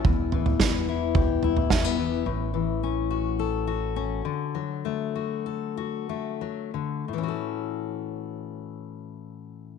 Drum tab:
SD |----o-------o---|----------------|----------------|----------------|
FT |o-oo----o-oo----|----------------|----------------|----------------|
BD |o---o---o---o---|----------------|----------------|----------------|